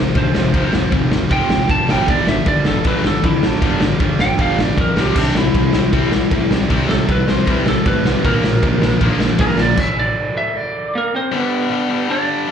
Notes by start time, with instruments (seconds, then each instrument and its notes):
Already playing: distorted electric guitar F2 C3 F3, lead electric guitar C5
0.15 picked electric bass D2, distorted electric guitar F2 C3 F3, lead electric guitar C5, kick, ride
0.34 picked electric bass F1, distorted electric guitar F2 C3 F3, snare
0.53 picked electric bass F1, distorted electric guitar F2 C3 F3, kick, ride
0.72 picked electric bass F1, distorted electric guitar F2 C3 F3, snare
0.92 picked electric bass F1, distorted electric guitar F2 C3 F3, kick, ride
1.10 picked electric bass F1, distorted electric guitar F2 C3 F3, snare
1.30 picked electric bass F1, distorted electric guitar F2 C3 F3, lead electric guitar G5, kick, ride
1.50 distorted electric guitar F2 C3 F3, snare
1.69 picked electric bass F1, distorted electric guitar F2 C3 F3, lead electric guitar A5, kick, ride
1.89 picked electric bass G1, distorted electric guitar G2 D3 G3, lead electric guitar G5, snare
2.08 picked electric bass G1, distorted electric guitar G2 D3 G3, lead electric guitar D5, kick, ride
2.27 picked electric bass G1, distorted electric guitar G2 D3 G3, lead electric guitar E5, snare
2.46 picked electric bass G1, distorted electric guitar G2 D3 G3, lead electric guitar D5, kick, ride
2.65 picked electric bass G1, distorted electric guitar G2 D3 G3, lead electric guitar A4, snare
2.84 picked electric bass G1, distorted electric guitar G2 D3 G3, lead electric guitar B4, kick, ride
3.03 distorted electric guitar G2 D3 G3, lead electric guitar A4, snare
3.22 picked electric bass F2, distorted electric guitar G2 D3 G3, lead electric guitar E4, kick, ride
3.42 picked electric bass G1, distorted electric guitar G2 D3 G3, lead electric guitar D4, snare
3.62 picked electric bass G1, distorted electric guitar G2 D3 G3, kick, ride
3.80 picked electric bass G1, distorted electric guitar G2 D3 G3, snare
3.99 picked electric bass G1, distorted electric guitar G2 D3 G3, kick, ride
4.19 picked electric bass G1, distorted electric guitar G2 D3 G3, lead electric guitar G5, snare
4.38 picked electric bass G1, distorted electric guitar G2 D3 G3, lead electric guitar F5, kick, ride
4.56 distorted electric guitar G2 D3 G3, snare
4.62 lead electric guitar D5
4.76 picked electric bass F2, distorted electric guitar G2 D3 G3, kick, ride
4.81 lead electric guitar A#4
4.95 picked electric bass C2, distorted electric guitar C3 G3 C4, snare
5.00 lead electric guitar G4
5.16 picked electric bass C2, distorted electric guitar C3 G3 C4, lead electric guitar D4, kick, crash
5.34 picked electric bass C2, distorted electric guitar C3 G3 C4, lead electric guitar E4, snare
5.54 picked electric bass C2, distorted electric guitar C3 G3 C4, kick, ride
5.72 picked electric bass C2, distorted electric guitar C3 G3 C4, snare
5.92 picked electric bass C2, distorted electric guitar C3 G3 C4, kick, ride
6.12 distorted electric guitar C3 G3 C4, snare
6.31 picked electric bass A2, distorted electric guitar C3 G3 C4, kick, ride
6.51 picked electric bass C2, distorted electric guitar C3 G3 C4, snare
6.69 picked electric bass C2, distorted electric guitar C3 G3 C4, kick, ride
6.89 picked electric bass C2, distorted electric guitar C3 G3 C4, lead electric guitar A4, snare
7.07 picked electric bass C2, distorted electric guitar C3 G3 C4, kick, ride
7.11 lead electric guitar B4
7.27 picked electric bass C2, distorted electric guitar C3 G3 C4, lead electric guitar C5, snare
7.46 picked electric bass C2, distorted electric guitar C3 G3 C4, lead electric guitar B4, kick, ride
7.66 distorted electric guitar C3 G3 C4, lead electric guitar A4, snare
7.85 picked electric bass A2, distorted electric guitar C3 G3 C4, lead electric guitar B4, kick, ride
8.04 picked electric bass C2, distorted electric guitar C3 G3 C4, snare
8.24 picked electric bass A#1, distorted electric guitar A#2 D3 F3 A#3, lead electric guitar A#4, kick, ride
8.43 picked electric bass A#1, distorted electric guitar A#2 D3 F3 A#3, snare
8.63 picked electric bass A#1, distorted electric guitar A#2 D3 F3 A#3, kick, ride
8.80 picked electric bass A#1, distorted electric guitar A#2 D3 F3 A#3, snare
9.01 picked electric bass A#1, distorted electric guitar A#2 D3 F3 A#3, kick, ride
9.20 distorted electric guitar A#2 D3 F3 A#3, snare
9.39 picked electric bass G2, distorted electric guitar A#2 D3 F3 A#3, lead electric guitar A#4, kick, ride
9.57 picked electric bass A#1, distorted electric guitar A#2 D3 F3 A#3, snare
9.61 lead electric guitar D5
9.77 lead electric guitar E5, kick, crash
9.99 lead electric guitar D5
10.37 lead electric guitar E5
10.57 lead electric guitar D5
10.95 lead electric guitar A#3 A#4
11.15 lead electric guitar C4 C5
11.32 distorted electric guitar G2 D3 G3, lead electric guitar B3
11.36 lead electric guitar B4
11.70 distorted electric guitar G2 D3 G3
11.90 distorted electric guitar G2 D3 G3
12.09 distorted electric guitar G2 D3 G3, lead electric guitar D4 D5
12.48 distorted electric guitar G2